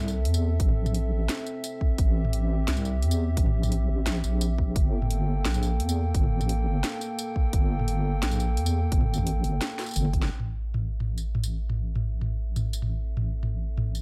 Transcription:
Already playing: wobble bass C2, analog synth pad C4 A4 E5
0.08 tambourine
0.25 wobble bass E2, closed hi-hat
0.34 tambourine
0.60 wobble bass A1, kick, closed hi-hat
0.69 mid tom
0.86 wobble bass A#1, mid tom, tambourine
0.94 closed hi-hat
1.12 wobble bass A1
1.29 snare, closed hi-hat
1.46 tambourine
1.64 closed hi-hat, tambourine
1.81 kick
1.98 wobble bass A1, analog synth pad G4, kick, closed hi-hat
2.25 mid tom
2.33 closed hi-hat
2.68 wobble bass C2, snare, closed hi-hat
2.77 mid tom, tambourine
2.85 tambourine
3.02 wobble bass E2, closed hi-hat
3.11 tambourine
3.37 wobble bass A1, kick, closed hi-hat
3.46 mid tom
3.63 wobble bass A#1, mid tom, tambourine
3.72 closed hi-hat
3.89 wobble bass A1
4.06 wobble bass A#1, snare, closed hi-hat
4.24 wobble bass A#1, tambourine
4.41 closed hi-hat, tambourine
4.58 kick
4.76 wobble bass G1, analog synth pad A#3 A4 G5, kick, closed hi-hat
5.02 mid tom
5.11 closed hi-hat
5.45 wobble bass A#1, snare, closed hi-hat
5.54 mid tom, tambourine
5.63 tambourine
5.80 wobble bass E2, closed hi-hat
5.89 tambourine
6.14 wobble bass G1, kick, closed hi-hat
6.23 mid tom
6.41 wobble bass A1, mid tom, tambourine
6.49 closed hi-hat
6.67 wobble bass G1
6.84 snare, closed hi-hat
7.01 tambourine
7.19 closed hi-hat, tambourine
7.36 kick
7.53 wobble bass G1, kick, closed hi-hat
7.79 mid tom
7.88 closed hi-hat
8.23 wobble bass A#1, snare, closed hi-hat
8.31 mid tom, tambourine
8.40 tambourine
8.57 wobble bass E2, closed hi-hat
8.66 tambourine
8.92 wobble bass G1, kick, closed hi-hat
9.01 mid tom
9.14 tambourine
9.18 wobble bass A1, mid tom
9.27 closed hi-hat
9.44 wobble bass G1, closed hi-hat
9.61 snare, closed hi-hat
9.79 snare, closed hi-hat, tambourine
9.81 tambourine
9.84 tambourine
9.86 tambourine
9.89 tambourine
9.91 tambourine
9.94 closed hi-hat, mid tom, tambourine
9.96 wobble bass G1, tambourine
10.05 mid tom
10.13 kick, closed hi-hat
10.22 wobble bass G1, snare
10.31 wobble bass A1, analog synth pad C4 A4 E5
10.40 mid tom
10.74 mid tom
11.00 mid tom
11.18 tambourine
11.35 mid tom
11.44 tambourine
11.70 mid tom
11.96 mid tom
12.21 mid tom
12.56 mid tom, tambourine
12.73 tambourine
12.82 mid tom
13.17 mid tom
13.43 mid tom
13.77 mid tom
13.95 tambourine

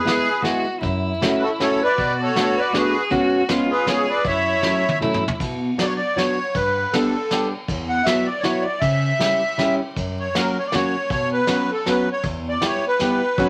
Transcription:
Already playing: accordion G#4 B4
0.05 steel-string acoustic guitar G#3 B3 E4 G#4, violin G#4, snare, closed hi-hat
0.42 steel-string acoustic guitar G#3 B3 E4 G#4, violin F#4, snare, closed hi-hat
0.81 steel-string acoustic guitar F#2, violin E4, kick, closed hi-hat
1.22 steel-string acoustic guitar A3 C#4 E4 F#4, snare, closed hi-hat
1.37 accordion F#4 B4
1.43 accordion A4
1.60 steel-string acoustic guitar A3 C#4 E4 F#4, accordion A4 C#5, snare, closed hi-hat
1.82 accordion B4 D5
1.96 steel-string acoustic guitar B2, violin F#4, kick, closed hi-hat
2.21 accordion A4 C#5
2.35 steel-string acoustic guitar A3 B3 D4 F#4, accordion A4, snare, closed hi-hat
2.41 accordion C#5
2.57 accordion B4 D5
2.73 steel-string acoustic guitar A3 B3 D4 F#4, accordion F#4, violin G#4, snare, closed hi-hat
2.78 accordion B4
3.11 steel-string acoustic guitar G#3 B3 C#4 F#4, violin F#4, kick, closed hi-hat
3.49 steel-string acoustic guitar G#3 B3 C#4 F4, violin F4, snare, closed hi-hat
3.70 accordion G#4 B4
3.86 steel-string acoustic guitar G#3 B3 C#4 F4, accordion G#4 C#5, violin G#4, snare, closed hi-hat
4.09 accordion B4 D5
4.25 steel-string acoustic guitar F#2, violin E4, accordion C#5 E5, kick, closed hi-hat
4.63 steel-string acoustic guitar F#3 A3 C#4 E4, snare
4.89 high tom
5.00 steel-string acoustic guitar F#3 A3 C#4 E4, violin E4, mid tom
5.14 mid tom
5.28 floor tom
5.40 steel-string acoustic guitar B2, kick, ride
5.78 steel-string acoustic guitar F#3 B3 D4 F#4, accordion D5, snare, ride
5.86 accordion C#5
5.96 accordion D5
6.16 steel-string acoustic guitar F#3 B3 D4 F#4, accordion C#5, snare, ride
6.55 steel-string acoustic guitar G2, accordion B4, kick, ride
6.93 steel-string acoustic guitar G3 B3 D4 G4, accordion A4, snare, ride
7.31 steel-string acoustic guitar G3 B3 D4 G4, snare, ride
7.68 steel-string acoustic guitar E2, kick, ride
7.89 accordion F#5
8.04 steel-string acoustic guitar F#3 B3 E4 F#4, accordion E5, snare, ride
8.26 accordion D5
8.40 steel-string acoustic guitar F#3 B3, accordion C#5, snare, ride
8.44 steel-string acoustic guitar E4 F#4
8.61 accordion D5
8.80 steel-string acoustic guitar C#3, accordion E5, kick, ride
9.19 steel-string acoustic guitar G3 C#4 E4 G4, snare, ride
9.58 steel-string acoustic guitar G3 C#4 E4 G4, snare, ride
9.96 steel-string acoustic guitar F#2, kick, ride
10.19 accordion C#5
10.35 steel-string acoustic guitar F#3 A#3 C#4 F#4, accordion A#4, snare, ride
10.59 accordion C#5
10.67 accordion D5
10.72 steel-string acoustic guitar F#3 A#3 C#4 F#4, accordion C#5, snare, ride
11.10 steel-string acoustic guitar B2, accordion C#5, kick, ride
11.33 accordion B4
11.47 steel-string acoustic guitar F#3 B3 C#4 F#4, snare, ride
11.72 accordion A4
11.86 steel-string acoustic guitar F#3 B3 C#4 F#4, accordion B4, snare, ride
12.12 accordion C#5
12.23 steel-string acoustic guitar E2, kick, ride
12.49 accordion D5
12.61 steel-string acoustic guitar G3 B3 E4 G4, snare, ride
12.66 accordion C#5
12.88 accordion B4
12.99 steel-string acoustic guitar G3 B3 E4 G4, snare, ride
13.38 steel-string acoustic guitar F#3 B3 C#4 F#4, kick, ride

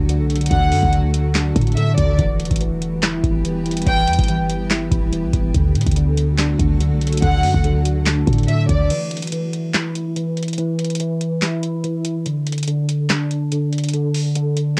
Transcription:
Already playing: 808-style bass D2, ambient pad D3 F#3 A3 F#4, tine electric piano D4
0.09 tine electric piano D3, closed hi-hat
0.20 808-style bass C2
0.30 closed hi-hat
0.36 closed hi-hat
0.41 closed hi-hat
0.46 closed hi-hat
0.51 808-style bass D2, tine electric piano D3, violin section F#5, kick, closed hi-hat
0.72 808-style bass F#2, open hi-hat
0.83 808-style bass D2, kick
0.93 tine electric piano D3, closed hi-hat
1.14 closed hi-hat
1.35 tine electric piano D4, snare, clap, closed hi-hat
1.56 808-style bass A2, kick, closed hi-hat
1.61 closed hi-hat
1.67 closed hi-hat
1.72 closed hi-hat
1.77 tine electric piano D3, violin section E5, closed hi-hat
1.98 808-style bass D2, violin section D5, kick, closed hi-hat
2.19 808-style bass E1, ambient pad E3 G3 B3 G4, tine electric piano E3, kick, closed hi-hat
2.40 closed hi-hat, open hi-hat
2.45 closed hi-hat
2.51 808-style bass E1, kick, closed hi-hat
2.56 closed hi-hat
2.61 tine electric piano E3, closed hi-hat
2.82 closed hi-hat
3.03 tine electric piano E4, snare, clap, closed hi-hat
3.24 808-style bass E1, kick, closed hi-hat
3.45 tine electric piano E3, closed hi-hat
3.66 closed hi-hat
3.71 closed hi-hat
3.77 closed hi-hat
3.82 closed hi-hat
3.87 808-style bass E1, tine electric piano E3, violin section G5, kick, closed hi-hat
4.07 808-style bass E2, closed hi-hat, open hi-hat
4.13 closed hi-hat
4.19 808-style bass G1, kick, closed hi-hat
4.24 closed hi-hat
4.28 tine electric piano E3, closed hi-hat
4.50 closed hi-hat
4.70 tine electric piano E4, snare, clap, closed hi-hat
4.91 808-style bass E1, kick, closed hi-hat
5.12 tine electric piano E3, closed hi-hat
5.24 808-style bass B1
5.33 808-style bass E1, kick, closed hi-hat
5.54 808-style bass D2, tine electric piano D3, ambient pad D3 F#3 A3 F#4, kick, closed hi-hat
5.75 808-style bass A2, closed hi-hat, open hi-hat
5.81 closed hi-hat
5.87 808-style bass D2, kick, closed hi-hat
5.91 closed hi-hat
5.96 tine electric piano D3, closed hi-hat
6.17 closed hi-hat
6.38 tine electric piano D4, snare, clap, closed hi-hat
6.59 808-style bass D2, kick, closed hi-hat
6.80 tine electric piano D3, closed hi-hat
6.92 808-style bass C2
7.01 closed hi-hat
7.07 closed hi-hat
7.12 closed hi-hat
7.17 closed hi-hat
7.22 808-style bass D2, tine electric piano D3, violin section F#5, kick, closed hi-hat
7.43 808-style bass F#2, open hi-hat
7.54 808-style bass D2, kick
7.64 tine electric piano D3, closed hi-hat
7.85 closed hi-hat
8.06 tine electric piano D4, snare, clap, closed hi-hat
8.27 808-style bass A2, kick, closed hi-hat
8.33 closed hi-hat
8.38 closed hi-hat
8.43 closed hi-hat
8.48 tine electric piano D3, violin section E5, closed hi-hat
8.69 808-style bass D2, violin section D5, kick, closed hi-hat
8.90 tine electric piano E3, closed hi-hat, crash
9.11 closed hi-hat, open hi-hat
9.17 closed hi-hat
9.22 closed hi-hat
9.27 closed hi-hat
9.32 tine electric piano E3, closed hi-hat
9.53 closed hi-hat
9.74 tine electric piano E4, snare, clap, closed hi-hat
9.95 closed hi-hat
10.16 tine electric piano E3, closed hi-hat
10.37 closed hi-hat
10.43 closed hi-hat
10.48 closed hi-hat
10.53 closed hi-hat
10.58 tine electric piano E3, closed hi-hat
10.79 closed hi-hat, open hi-hat
10.84 closed hi-hat
10.90 closed hi-hat
10.95 closed hi-hat
11.00 tine electric piano E3, closed hi-hat
11.21 closed hi-hat
11.42 tine electric piano E4, snare, clap, closed hi-hat
11.63 closed hi-hat
11.84 tine electric piano E3, closed hi-hat
12.05 closed hi-hat
12.26 tine electric piano D3, closed hi-hat
12.47 closed hi-hat, open hi-hat
12.52 closed hi-hat
12.58 closed hi-hat
12.63 closed hi-hat
12.68 tine electric piano D3, closed hi-hat
12.89 closed hi-hat
13.10 tine electric piano D4, snare, clap, closed hi-hat
13.31 closed hi-hat
13.52 tine electric piano D3, closed hi-hat
13.73 closed hi-hat
13.78 closed hi-hat
13.84 closed hi-hat
13.89 closed hi-hat
13.94 tine electric piano D3, closed hi-hat
14.14 open hi-hat
14.35 tine electric piano D3, closed hi-hat
14.57 closed hi-hat

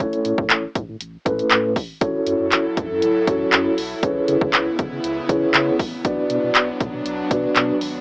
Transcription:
0.00 sub bass A1, tine electric piano A3 C#4 E4 A4 C#5, kick, closed hi-hat
0.13 closed hi-hat
0.25 sub bass A2, closed hi-hat
0.38 sub bass A2, kick
0.50 sub bass A1, clap, closed hi-hat
0.75 sub bass A2, kick, closed hi-hat
0.89 sub bass A2
1.01 sub bass A1, closed hi-hat
1.25 sub bass A2, tine electric piano A3 C#4 E4 A4 B4, kick, closed hi-hat
1.39 closed hi-hat
1.51 sub bass A2, clap, closed hi-hat
1.76 sub bass E1, kick, open hi-hat
2.01 sub bass F#1, analog synth pad F#3 E4 A4, tine electric piano C#4 E4 F#4 A4 C#5, kick, closed hi-hat
2.26 sub bass F#2, closed hi-hat
2.40 sub bass F#2
2.52 sub bass F#1, clap, closed hi-hat
2.77 sub bass F#2, kick, closed hi-hat
2.90 sub bass F#2
3.02 sub bass F#1, closed hi-hat
3.27 sub bass F#2, tine electric piano C#4 E4 F#4 A4 C#5, kick, closed hi-hat
3.53 sub bass F#2, clap, closed hi-hat
3.78 sub bass B1, open hi-hat
4.03 sub bass C#2, analog synth pad C#3 B3 E4, tine electric piano C#4 E4 G#4 B4 C#5, kick, closed hi-hat
4.28 sub bass C#3, closed hi-hat
4.41 sub bass C#3, kick
4.53 sub bass C#2, clap, closed hi-hat
4.79 sub bass C#3, kick, closed hi-hat
4.92 sub bass C#3
5.04 sub bass C#2, closed hi-hat
5.29 sub bass C#3, tine electric piano C#4 E4 G#4 B4 C#5, kick, closed hi-hat
5.54 sub bass C#3, clap, closed hi-hat
5.79 sub bass A1, kick, open hi-hat
6.04 sub bass B1, analog synth pad F#3 D4, tine electric piano B3 D4 F#4 B4 D5, kick, closed hi-hat
6.30 sub bass B2, closed hi-hat
6.43 sub bass B2
6.55 sub bass B1, clap, closed hi-hat
6.81 sub bass B2, kick, closed hi-hat
6.94 sub bass B2
7.06 sub bass B1, closed hi-hat
7.30 sub bass B2, tine electric piano B3 D4 F#4 B4 D5, kick, closed hi-hat
7.56 sub bass B2, clap, closed hi-hat
7.81 sub bass G#1, open hi-hat

